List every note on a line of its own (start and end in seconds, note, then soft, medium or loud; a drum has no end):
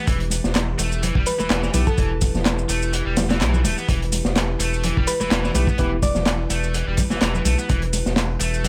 0.00 8.68 E3 medium
0.00 8.68 E4 medium
0.00 8.68 G4 medium
0.00 3.87 B4 medium
0.07 0.40 E1 loud
0.07 0.18 E3 medium
0.07 kick loud
0.07 closed hi-hat medium
0.07 shaker soft
0.20 closed hi-hat soft
0.30 closed hi-hat medium
0.30 open hi-hat medium
0.30 muted conga medium
0.30 shaker medium
0.44 0.75 E1 loud
0.44 snare soft
0.44 shaker soft
0.55 snare loud
0.55 clap loud
0.55 closed hi-hat medium
0.55 shaker soft
0.78 1.11 E1 loud
0.78 1.01 A3 medium
0.78 closed hi-hat medium
0.78 open hi-hat medium
0.78 muted conga soft
0.78 shaker medium
0.92 shaker soft
1.02 1.14 E3 medium
1.02 closed hi-hat medium
1.02 low conga medium
1.02 shaker soft
1.15 1.24 E1 loud
1.15 1.25 G3 medium
1.15 kick loud
1.26 1.35 B4 loud
1.26 closed hi-hat medium
1.26 open hi-hat medium
1.26 shaker medium
1.39 1.48 E1 soft
1.39 1.48 E3 medium
1.39 1.46 B4 medium
1.39 high conga medium
1.39 shaker soft
1.50 1.69 E1 medium
1.50 1.62 E3 medium
1.50 snare loud
1.50 clap loud
1.50 closed hi-hat medium
1.50 shaker soft
1.63 1.69 E3 loud
1.63 snare soft
1.63 shaker soft
1.74 1.84 B1 medium
1.74 1.86 A3 medium
1.74 1.85 B3 medium
1.74 1.85 E4 medium
1.74 1.85 G4 medium
1.74 1.85 B4 loud
1.74 closed hi-hat medium
1.74 open hi-hat medium
1.74 muted conga medium
1.74 high conga loud
1.74 low conga loud
1.74 shaker medium
1.87 1.96 B3 medium
1.87 2.53 A4 medium
1.87 kick loud
1.87 shaker soft
1.98 2.31 E1 loud
1.98 2.09 E3 medium
1.98 kick loud
1.98 closed hi-hat medium
1.98 shaker soft
2.21 kick medium
2.21 closed hi-hat medium
2.21 open hi-hat medium
2.21 muted conga medium
2.21 shaker medium
2.34 2.66 E1 loud
2.34 snare soft
2.34 low conga medium
2.34 shaker soft
2.45 snare loud
2.45 clap loud
2.45 closed hi-hat medium
2.45 shaker soft
2.58 shaker soft
2.69 3.02 E1 loud
2.69 2.92 A3 medium
2.69 closed hi-hat medium
2.69 open hi-hat medium
2.69 muted conga soft
2.69 shaker medium
2.82 shaker soft
2.93 3.04 E3 medium
2.93 closed hi-hat medium
2.93 shaker soft
3.06 3.42 E1 medium
3.06 3.15 G3 medium
3.17 snare loud
3.17 closed hi-hat medium
3.17 open hi-hat medium
3.17 low conga medium
3.17 shaker medium
3.30 3.39 E3 medium
3.30 snare loud
3.30 closed hi-hat medium
3.30 high conga medium
3.30 shaker soft
3.40 3.66 B1 loud
3.40 3.52 E3 medium
3.40 snare loud
3.40 clap loud
3.40 closed hi-hat medium
3.40 shaker soft
3.53 3.59 E3 loud
3.53 low conga medium
3.53 shaker soft
3.64 3.75 D1 medium
3.64 3.76 A3 medium
3.64 closed hi-hat medium
3.64 open hi-hat medium
3.64 muted conga medium
3.64 high conga loud
3.64 shaker medium
3.77 3.87 B3 medium
3.77 shaker soft
3.88 4.21 E1 loud
3.88 3.99 E3 medium
3.88 8.68 B4 medium
3.88 kick loud
3.88 closed hi-hat medium
3.88 shaker soft
4.02 closed hi-hat soft
4.12 closed hi-hat medium
4.12 open hi-hat medium
4.12 muted conga medium
4.12 shaker medium
4.25 4.56 E1 loud
4.25 snare medium
4.25 shaker soft
4.36 snare loud
4.36 clap loud
4.36 closed hi-hat medium
4.36 shaker soft
4.59 4.92 E1 loud
4.59 4.82 A3 medium
4.59 closed hi-hat medium
4.59 open hi-hat medium
4.59 muted conga soft
4.59 shaker medium
4.73 shaker soft
4.83 4.95 E3 medium
4.83 closed hi-hat loud
4.83 low conga medium
4.83 shaker soft
4.97 5.05 E1 loud
4.97 5.06 G3 medium
4.97 kick medium
5.07 5.16 B4 loud
5.07 closed hi-hat medium
5.07 open hi-hat medium
5.07 shaker medium
5.20 5.29 E1 soft
5.20 5.29 E3 medium
5.20 5.27 B4 medium
5.20 high conga medium
5.20 shaker soft
5.31 5.50 E1 medium
5.31 5.43 E3 medium
5.31 snare loud
5.31 clap loud
5.31 closed hi-hat medium
5.31 shaker soft
5.44 5.50 E3 loud
5.44 snare medium
5.44 shaker soft
5.54 5.65 B1 loud
5.54 5.67 A3 medium
5.54 5.66 B3 medium
5.54 5.66 E4 medium
5.54 5.66 G4 medium
5.54 5.66 B4 loud
5.54 closed hi-hat medium
5.54 open hi-hat medium
5.54 muted conga medium
5.54 high conga loud
5.54 low conga medium
5.54 shaker medium
5.67 5.77 B3 medium
5.67 kick loud
5.67 shaker soft
5.78 6.11 E1 loud
5.78 5.90 E3 medium
5.78 5.96 B3 loud
5.78 5.96 E4 medium
5.78 5.96 G4 medium
5.78 5.96 B4 loud
5.78 kick loud
5.78 closed hi-hat medium
5.78 shaker soft
6.02 6.70 D5 loud
6.02 kick loud
6.02 closed hi-hat medium
6.02 open hi-hat medium
6.02 muted conga medium
6.02 shaker medium
6.15 6.46 E1 loud
6.15 snare soft
6.15 low conga medium
6.15 shaker soft
6.26 snare loud
6.26 clap loud
6.26 closed hi-hat loud
6.26 shaker soft
6.49 6.83 E1 loud
6.49 6.73 A3 medium
6.49 closed hi-hat medium
6.49 open hi-hat medium
6.49 muted conga soft
6.49 shaker medium
6.63 shaker soft
6.74 6.85 E3 medium
6.74 closed hi-hat medium
6.74 shaker soft
6.87 6.96 E1 medium
6.87 6.96 G3 medium
6.97 kick loud
6.97 closed hi-hat medium
6.97 open hi-hat medium
6.97 low conga medium
6.97 shaker medium
7.10 7.19 E1 soft
7.10 7.20 E3 medium
7.10 snare soft
7.10 high conga medium
7.10 shaker soft
7.21 7.41 E1 medium
7.21 7.33 E3 medium
7.21 snare loud
7.21 clap loud
7.21 closed hi-hat medium
7.21 shaker soft
7.34 7.40 E3 loud
7.34 low conga medium
7.34 shaker soft
7.45 7.56 B1 loud
7.45 7.57 A3 medium
7.45 closed hi-hat medium
7.45 open hi-hat medium
7.45 muted conga medium
7.45 high conga medium
7.45 shaker medium
7.58 7.67 B3 medium
7.58 shaker soft
7.69 8.02 E1 loud
7.69 7.80 E3 medium
7.69 kick loud
7.69 closed hi-hat medium
7.69 shaker soft
7.82 closed hi-hat soft
7.93 closed hi-hat medium
7.93 open hi-hat medium
7.93 muted conga medium
7.93 shaker medium
8.06 8.37 E1 loud
8.06 snare soft
8.06 shaker soft
8.16 snare loud
8.16 clap loud
8.16 closed hi-hat medium
8.16 shaker soft
8.40 8.68 E1 loud
8.40 8.63 A3 medium
8.40 closed hi-hat medium
8.40 open hi-hat medium
8.40 muted conga soft
8.40 shaker medium
8.54 shaker soft
8.64 8.68 E3 medium
8.64 closed hi-hat medium
8.64 low conga loud
8.64 shaker soft